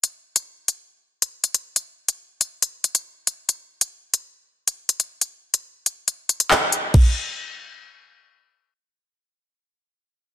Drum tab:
CC |----------------|----------------|----------------|----------------|
HH |x--x--x----x-xx-|x--x--x-x-xx--x-|x--x--x----x-xx-|x--x--x-x-xx--x-|
CP |----------------|----------------|----------------|------------x---|
BD |----------------|----------------|----------------|----------------|

CC |x---------------|----------------|
HH |----------------|----------------|
CP |----------------|----------------|
BD |o---------------|----------------|